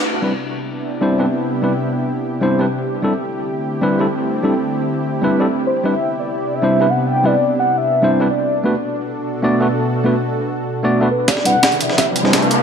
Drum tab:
CC |x---------------|----------------|----------------|----------------|
HH |----------------|----------------|----------------|----------------|
SD |----------------|----------------|----------------|----------------|
BD |----------------|----------------|----------------|----------------|

CC |----------------|----------------|----------------|----------------|
HH |----------------|----------------|----------------|----------------|
SD |----------------|----------------|----------------|----------------|
BD |----------------|----------------|----------------|----------------|

CC |----------------|
HH |x-x-xxx-x-x-xxx-|
SD |oo--o--oo--oo---|
BD |o---o---o---o---|